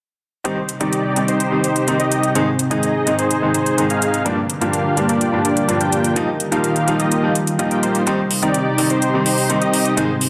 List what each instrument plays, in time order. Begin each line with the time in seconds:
0.44 analog synth pad C3 G3 D#4 C5, grand piano D#3 G3 C4 D#4, supersaw synth D#4 G4 C5, closed hi-hat
0.69 closed hi-hat
0.80 grand piano D#3 G3 C4 D#4, supersaw synth D#4 G4 D5, closed hi-hat
0.93 closed hi-hat
1.16 grand piano D#3 G3 C4 D#4, closed hi-hat
1.28 supersaw synth D#4 G4 C5, closed hi-hat
1.40 closed hi-hat
1.51 grand piano D#3 G3 C4 D#4
1.64 supersaw synth D#4 G4 C5, closed hi-hat
1.76 closed hi-hat
1.87 grand piano D#3 G3 C4 D#4, closed hi-hat
2.00 supersaw synth D#4 G4 D#5, closed hi-hat
2.12 closed hi-hat
2.23 closed hi-hat
2.35 grand piano G#2 D#3 G#3 C4 D#4, analog synth pad G#3, supersaw synth D#4 G#4 C5, closed hi-hat
2.59 closed hi-hat
2.70 grand piano G#2 D#3 G#3 C4 D#4, supersaw synth D#4 G#4 D#5, closed hi-hat
2.83 closed hi-hat
3.06 grand piano G#2 D#3 G#3 C4 D#4, closed hi-hat
3.19 supersaw synth D#4 G#4 C5, closed hi-hat
3.31 closed hi-hat
3.42 grand piano G#2 D#3 G#3 C4 D#4
3.54 supersaw synth D#4 G#4 C5, closed hi-hat
3.66 closed hi-hat
3.78 grand piano G#2 D#3 G#3 C4 D#4, closed hi-hat
3.90 supersaw synth D#4 G#4 F5, closed hi-hat
4.02 closed hi-hat
4.14 closed hi-hat
4.25 grand piano G2 F3 G3 A#3 D4, analog synth pad D3 G3 F4 A#4, supersaw synth A#3 D4 F4 G4 D5, closed hi-hat
4.50 closed hi-hat
4.61 grand piano G2 F3 G3 A#3 D4, supersaw synth A#3 D4 F4 G4 F5, closed hi-hat
4.73 closed hi-hat
4.97 grand piano G2 F3 G3 A#3 D4, closed hi-hat
5.09 supersaw synth A#3 D4 F4 G4 D5, closed hi-hat
5.21 closed hi-hat
5.32 grand piano G2 F3 G3 A#3 D4
5.45 supersaw synth A#3 D4 F4 G4 D5, closed hi-hat
5.57 closed hi-hat
5.68 grand piano G2 F3 G3 A#3 D4, closed hi-hat
5.81 supersaw synth A#3 D4 F4 G4 G5, closed hi-hat
5.92 closed hi-hat
6.04 closed hi-hat
6.16 analog synth pad D#3 F4, grand piano F3 G3 A#3 D#4, supersaw synth A#3 D#4 F4 G4 D#5, closed hi-hat
6.40 closed hi-hat
6.51 grand piano F3 G3 A#3 D#4, supersaw synth A#3 D#4 F4 G4 F5, closed hi-hat
6.64 closed hi-hat
6.76 closed hi-hat
6.87 grand piano F3 G3 A#3 D#4, closed hi-hat
7.00 supersaw synth A#3 D#4 F4 G4 D#5, closed hi-hat
7.11 closed hi-hat
7.23 grand piano F3 G3 A#3 D#4
7.35 closed hi-hat
7.47 closed hi-hat
7.59 grand piano F3 G3 A#3 D#4, supersaw synth A#3 D#4 F4 G4 D#5, closed hi-hat
7.71 supersaw synth A#3 D#4 F4 G4 G5, closed hi-hat
7.83 supersaw synth A#3 D#4 F4 G4 C5, closed hi-hat
7.95 closed hi-hat
8.06 analog synth pad C3 D#4 C5, grand piano D#3 G3 C4 D#4, supersaw synth D#4 G4 C5, closed hi-hat
8.31 open hi-hat
8.42 grand piano D#3 G3 C4 D#4, supersaw synth D#4 G4 D5, closed hi-hat
8.54 closed hi-hat
8.78 grand piano D#3 G3 C4 D#4, open hi-hat
8.90 supersaw synth D#4 G4 C5, closed hi-hat
9.02 closed hi-hat
9.13 grand piano D#3 G3 C4 D#4
9.26 supersaw synth D#4 G4 C5, open hi-hat
9.38 open hi-hat
9.49 grand piano D#3 G3 C4 D#4, closed hi-hat
9.61 supersaw synth D#4 G4 D#5, closed hi-hat
9.73 open hi-hat
9.85 closed hi-hat
9.97 grand piano G#2 D#3 G#3 C4 D#4, analog synth pad C3 G#3 D#4, supersaw synth D#4 G#4 C5, closed hi-hat
10.21 open hi-hat